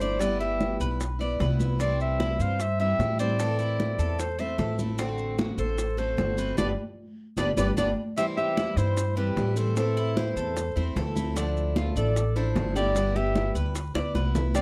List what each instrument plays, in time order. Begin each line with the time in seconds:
Already playing: upright bass G1, clarinet C5
0.00 steel-string acoustic guitar F3 A3 D4 E4, cuban tres D5, high conga, maracas
0.19 steel-string acoustic guitar G3 B3 E4, cuban tres B4, clarinet D5, high bongo, high conga, maracas
0.40 cuban tres G4, clarinet E5, high bongo, high conga, maracas
0.60 high bongo, high conga, maracas
0.80 upright bass B1, cuban tres B4, high conga, maracas
1.00 muted steel-string acoustic guitar stroke, high bongo, high conga, maracas
1.19 steel-string acoustic guitar B3 E4, cuban tres D5, high bongo, high conga, maracas
1.39 upright bass C2, steel-string acoustic guitar G3 B3 E4, cuban tres B4, high bongo, low bongo, high conga, maracas
1.59 steel-string acoustic guitar B3 E4, high bongo, high conga, maracas
1.79 steel-string acoustic guitar C3 E3 G3 C4 E4, cuban tres C4, clarinet D5, high bongo, high conga, maracas
2.00 clarinet E5, high conga, maracas
2.20 cuban tres E4, high bongo, high conga, maracas
2.39 upright bass G2, cuban tres C5, clarinet F5, high conga, maracas
2.60 clarinet E5, muted steel-string acoustic guitar stroke, high bongo, high conga, maracas
2.80 steel-string acoustic guitar E3 G3 C4 E4, cuban tres G4, clarinet E5, high conga, maracas
2.99 upright bass A2, steel-string acoustic guitar E3 G3 C4 E4, high bongo, low bongo, high conga, maracas
3.19 steel-string acoustic guitar E3 G3 C4 E4, cuban tres C5, clarinet D5, high conga, maracas
3.39 steel-string acoustic guitar E3 A3 C4 E4, cuban tres A4, high bongo, high conga, maracas
3.59 cuban tres E4, high bongo, high conga, maracas
3.80 high bongo, high conga, maracas
3.98 upright bass E2, cuban tres A4, high conga, maracas
4.19 clarinet C5, muted steel-string acoustic guitar stroke, high bongo, high conga, maracas
4.39 steel-string acoustic guitar A3 C4 E4, cuban tres C5, clarinet E5, high bongo, high conga, maracas
4.58 upright bass A1, steel-string acoustic guitar E3 A3 C4 E4, cuban tres A4, high bongo, low bongo, high conga, maracas
4.79 steel-string acoustic guitar A3 C4 E4, high bongo, high conga, maracas
4.98 steel-string acoustic guitar D3 A3 C4 F#4, cuban tres C4, high bongo, high conga, maracas
5.18 high conga, maracas
5.38 cuban tres F#4, high bongo, high conga, maracas
5.58 upright bass A1, clarinet A4, cuban tres C5, high conga, maracas
5.78 muted steel-string acoustic guitar stroke, high bongo, high conga, maracas
5.97 steel-string acoustic guitar A3 C4 F#4, cuban tres A4, clarinet C5, high conga, maracas
6.17 upright bass G1, steel-string acoustic guitar D3 A3 C4 F#4, high bongo, low bongo, high conga, maracas
6.37 steel-string acoustic guitar A3 C4 F#4, cuban tres B4, high conga, maracas
6.57 upright bass G1, steel-string acoustic guitar G3 B3 D4, cuban tres D4 G4 B4, clarinet D5, high bongo, high conga, maracas
7.37 upright bass G1, steel-string acoustic guitar G3 B3 D4, cuban tres D4 G4 B4, clarinet D5, high bongo, high conga, maracas
7.57 upright bass G1, steel-string acoustic guitar G3 B3 D4, cuban tres D4 G4 B4, clarinet D5, high bongo, high conga, maracas
7.77 upright bass G1, steel-string acoustic guitar G3 B3 D4, cuban tres D4 G4 B4, clarinet D5, high bongo, high conga, maracas
8.16 steel-string acoustic guitar C3 E3 G3 C4 E4, cuban tres C4, nylon-string guitar G4, clarinet E5, high bongo, high conga, maracas
8.37 nylon-string guitar G4, clarinet E5, high conga, maracas
8.57 cuban tres E4, high bongo, high conga, maracas
8.76 upright bass G2, nylon-string guitar E4, cuban tres C5, clarinet C5, high conga, maracas
8.97 muted steel-string acoustic guitar stroke, high bongo, high conga, maracas
9.16 steel-string acoustic guitar E3 G3 C4 E4, nylon-string guitar E4, cuban tres G4, clarinet B4, high conga, maracas
9.36 upright bass A2, steel-string acoustic guitar E3 G3 C4 E4, high bongo, low bongo, high conga, maracas
9.56 steel-string acoustic guitar E3 G3 C4 E4, nylon-string guitar C4, clarinet A4, cuban tres C5, high conga, maracas
9.75 steel-string acoustic guitar E3 A3 C4 E4, nylon-string guitar C4, clarinet A4, cuban tres A4, high bongo, high conga, maracas
9.97 cuban tres E4, high bongo, high conga, maracas
10.17 nylon-string guitar E4, clarinet C5, high bongo, high conga, maracas
10.36 upright bass E2, cuban tres A4, high conga, maracas
10.56 muted steel-string acoustic guitar stroke, high bongo, high conga, maracas
10.76 upright bass E2, steel-string acoustic guitar A3 C4 E4, cuban tres C5, high bongo, high conga, maracas
10.96 upright bass D2, steel-string acoustic guitar E3 A3 C4 E4, cuban tres A4, high bongo, low bongo, high conga, maracas
11.15 steel-string acoustic guitar A3 C4 E4, high bongo, high conga, maracas
11.36 steel-string acoustic guitar D3 F3 A3 D4 E4, cuban tres D4, high bongo, high conga, maracas
11.56 high conga, maracas
11.76 cuban tres F4, high bongo, high conga, maracas
11.96 upright bass A1, nylon-string guitar D4, clarinet A4, cuban tres D5, high conga, maracas
12.16 muted steel-string acoustic guitar stroke, high bongo, high conga, maracas
12.36 steel-string acoustic guitar F3 A3 D4 E4, nylon-string guitar E4, cuban tres A4, clarinet C5, high conga, maracas
12.55 upright bass G1, steel-string acoustic guitar F3 A3 D4 E4, high bongo, low bongo, high conga, maracas
12.75 steel-string acoustic guitar F3 A3 D4 E4, nylon-string guitar G4, cuban tres D5, clarinet D5, high conga, maracas
12.95 steel-string acoustic guitar G3 B3 E4, cuban tres B4, high bongo, high conga, maracas
13.16 nylon-string guitar G4, cuban tres G4, clarinet E5, high bongo, high conga, maracas
13.36 high bongo, high conga, maracas
13.55 upright bass D2, cuban tres B4, high conga, maracas
13.75 muted steel-string acoustic guitar stroke, high bongo, high conga, maracas
13.94 upright bass D2, steel-string acoustic guitar B3 E4, cuban tres D5, high bongo, high conga, maracas
14.15 upright bass C2, steel-string acoustic guitar G3 B3 E4, cuban tres B4, high bongo, high conga, maracas
14.35 steel-string acoustic guitar B3 E4, low bongo, high conga, maracas
14.54 steel-string acoustic guitar C3 E3 G3 C4 E4, cuban tres C4, nylon-string guitar G4, clarinet D5, high bongo, high conga, maracas